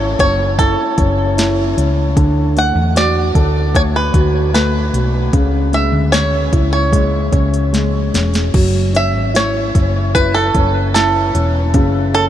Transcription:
Already playing: fingered electric bass G#1, grand piano C#3 C#4 E4, five-string banjo C#5, downlifter
0.19 fingered electric bass F#1, grand piano C#4, five-string banjo C#5, kick, closed hi-hat
0.58 grand piano E4, five-string banjo A4, kick, closed hi-hat
0.98 fingered electric bass F#1, grand piano C#4, kick, closed hi-hat
1.38 grand piano E4, snare, closed hi-hat
1.77 fingered electric bass C#2, grand piano C#4, closed hi-hat
2.17 fingered electric bass D2, grand piano D3, kick, closed hi-hat
2.56 grand piano A3, five-string banjo F#5, closed hi-hat
2.75 fingered electric bass E2
2.95 grand piano F#4, five-string banjo D5, snare, closed hi-hat
3.35 fingered electric bass D2, grand piano A4, kick, closed hi-hat
3.74 grand piano A3, five-string banjo C#5, kick, closed hi-hat
3.96 five-string banjo B4
4.14 fingered electric bass D2, grand piano F#4, kick, closed hi-hat
4.54 grand piano A3, five-string banjo B4, snare, closed hi-hat
4.93 fingered electric bass B1, grand piano F#4, closed hi-hat
5.33 fingered electric bass C#2, grand piano C#3, kick, closed hi-hat
5.72 grand piano G#3, five-string banjo E5, closed hi-hat
5.92 fingered electric bass D2
6.12 grand piano C#4, five-string banjo C#5, snare, closed hi-hat
6.53 fingered electric bass C#2, grand piano E4, kick, closed hi-hat
6.73 five-string banjo C#5
6.93 grand piano G#3, kick, closed hi-hat
7.32 fingered electric bass C#2, grand piano C#4, kick, closed hi-hat
7.54 closed hi-hat
7.72 grand piano G#3, snare, closed hi-hat
8.14 fingered electric bass E1, grand piano C#4, snare, closed hi-hat
8.34 snare, closed hi-hat
8.54 fingered electric bass F#1, grand piano F#3, kick, crash
8.93 grand piano C#4, five-string banjo E5, closed hi-hat
9.15 fingered electric bass G#1
9.34 grand piano E4, five-string banjo C#5, snare, closed hi-hat
9.75 fingered electric bass F#1, grand piano C#4, kick, closed hi-hat
10.14 grand piano E4, five-string banjo B4, kick, closed hi-hat
10.34 five-string banjo A4
10.54 fingered electric bass F#1, grand piano C#4, kick, closed hi-hat
10.94 grand piano E4, five-string banjo A4, snare, closed hi-hat
11.34 fingered electric bass E1, grand piano C#4, closed hi-hat
11.74 fingered electric bass F#1, grand piano C#3, kick, closed hi-hat
12.14 grand piano C#4, five-string banjo A4, closed hi-hat

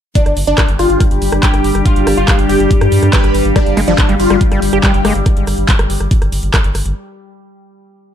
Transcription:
0.15 synth drone G3 G4, supersaw synth D4, ambient pad D4, kick, closed hi-hat
0.26 analog synth bass G1, ambient pad G5, cross-stick, closed hi-hat
0.31 ambient pad G4
0.37 analog synth bass G1, open hi-hat
0.47 analog synth bass G1, supersaw synth D4, closed hi-hat
0.58 kick, cross-stick, clap, closed hi-hat
0.69 analog synth bass G1, closed hi-hat
0.79 analog synth bass G1, supersaw synth F4, cross-stick, open hi-hat
0.90 analog synth bass G1, closed hi-hat
1.00 kick, cross-stick, closed hi-hat
1.11 analog synth bass G1, closed hi-hat
1.22 analog synth bass G1, open hi-hat
1.32 analog synth bass G1, cross-stick, closed hi-hat
1.43 supersaw synth G4, kick, clap, closed hi-hat
1.54 analog synth bass G1, cross-stick, closed hi-hat
1.64 analog synth bass G1, open hi-hat
1.75 analog synth bass G1, cross-stick, closed hi-hat
1.86 supersaw synth F4, kick, closed hi-hat
1.96 analog synth bass G1, closed hi-hat
2.07 analog synth bass G1, cross-stick, open hi-hat
2.17 analog synth bass G1, supersaw synth F4, closed hi-hat
2.28 kick, cross-stick, clap, closed hi-hat
2.39 analog synth bass G1, closed hi-hat
2.49 analog synth bass G1, supersaw synth G4, open hi-hat
2.60 analog synth bass G1, closed hi-hat
2.71 kick, closed hi-hat
2.81 analog synth bass G2, cross-stick, closed hi-hat
2.92 analog synth bass G2, open hi-hat
3.03 analog synth bass G2, cross-stick, closed hi-hat
3.13 supersaw synth B4, kick, clap, closed hi-hat
3.18 ambient pad F5
3.24 analog synth bass G#1, cross-stick, closed hi-hat
3.35 analog synth bass G#1, open hi-hat
3.45 analog synth bass G#1, closed hi-hat
3.56 acid bass G3, supersaw synth D4, kick, cross-stick, closed hi-hat
3.66 analog synth bass G1, closed hi-hat
3.77 analog synth bass G1, acid bass G#3, cross-stick, open hi-hat
3.88 analog synth bass G1, acid bass F3, supersaw synth D4, closed hi-hat
3.98 kick, cross-stick, clap, closed hi-hat
4.09 analog synth bass G1, acid bass G3, closed hi-hat
4.20 analog synth bass G1, supersaw synth F4, open hi-hat
4.30 analog synth bass G1, acid bass G3, cross-stick, closed hi-hat
4.41 kick, closed hi-hat
4.52 analog synth bass G1, acid bass G3, cross-stick, closed hi-hat
4.62 analog synth bass G1, open hi-hat
4.73 analog synth bass G1, acid bass G4, cross-stick, closed hi-hat
4.83 acid bass G3, supersaw synth G4, kick, clap, closed hi-hat
4.94 analog synth bass G1, closed hi-hat
5.05 analog synth bass G1, acid bass G#3, cross-stick, open hi-hat
5.15 analog synth bass G1, closed hi-hat
5.26 kick, cross-stick, closed hi-hat
5.37 analog synth bass G1, closed hi-hat
5.47 analog synth bass G1, cross-stick, open hi-hat
5.58 analog synth bass G1, closed hi-hat
5.69 kick, clap, closed hi-hat
5.79 analog synth bass G1, cross-stick, closed hi-hat
5.90 analog synth bass G1, open hi-hat
6.00 analog synth bass G1, cross-stick, closed hi-hat
6.11 kick, closed hi-hat
6.22 analog synth bass G1, cross-stick, closed hi-hat
6.32 analog synth bass G1, open hi-hat
6.43 analog synth bass G1, closed hi-hat
6.54 kick, cross-stick, clap, closed hi-hat
6.64 analog synth bass G1, closed hi-hat
6.75 analog synth bass G1, cross-stick, open hi-hat
6.86 analog synth bass G1, closed hi-hat

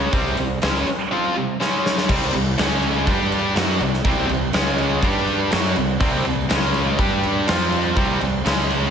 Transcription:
Already playing: fingered electric bass C#2, distorted electric guitar C#3 G#3 C#4
0.13 fingered electric bass C2, distorted electric guitar C3 G3 C4, kick, open hi-hat
0.37 fingered electric bass C2, distorted electric guitar C3 G3, open hi-hat
0.62 fingered electric bass C#2, distorted electric guitar C#3 G#3 C#4, snare, open hi-hat
0.86 muted distorted electric guitar stroke, muted fingered electric bass stroke, open hi-hat
1.11 distorted electric guitar F3 C4 F4
1.36 distorted electric guitar C3 G3
1.60 distorted electric guitar C#3 G#3 C#4, snare
1.86 snare
1.98 snare
2.09 fingered electric bass C2, distorted electric guitar C3 G3 C4, kick, crash
2.34 fingered electric bass C2, distorted electric guitar C3 G3, crash
2.58 fingered electric bass C#2, distorted electric guitar C#3 G#3 C#4, snare, crash
2.83 crash
3.06 fingered electric bass G2, distorted electric guitar G3 D4 G4, kick, crash
3.32 crash
3.56 fingered electric bass F#2, distorted electric guitar F#3 C#4 F#4, snare, crash
3.81 fingered electric bass C2, distorted electric guitar C3 G3, crash
3.94 snare
4.05 fingered electric bass C2, distorted electric guitar C3 G3 C4, kick, crash
4.29 fingered electric bass C2, distorted electric guitar C3 G3, crash
4.53 fingered electric bass C#2, distorted electric guitar C#3 G#3 C#4, snare, crash
4.78 crash
5.02 fingered electric bass G2, distorted electric guitar G3 D4 G4, kick, crash
5.27 crash
5.51 fingered electric bass F#2, distorted electric guitar F#3 C#4 F#4, snare, crash
5.76 fingered electric bass C2, distorted electric guitar C3 G3, crash
6.00 fingered electric bass C2, distorted electric guitar C3 G3 C4, kick, crash
6.25 fingered electric bass C2, distorted electric guitar C3 G3, crash
6.49 fingered electric bass C#2, distorted electric guitar C#3 G#3 C#4, snare, crash
6.74 crash
6.99 fingered electric bass G2, distorted electric guitar G3 D4 G4, kick, crash
7.23 crash
7.47 fingered electric bass F2, distorted electric guitar F3 C4 F4, snare, crash
7.72 crash
7.96 fingered electric bass C2, distorted electric guitar C3 G3 C4, kick, crash
8.21 fingered electric bass C2, distorted electric guitar C3 G3, crash
8.46 fingered electric bass C#2, distorted electric guitar C#3 G#3 C#4, snare, crash
8.70 crash

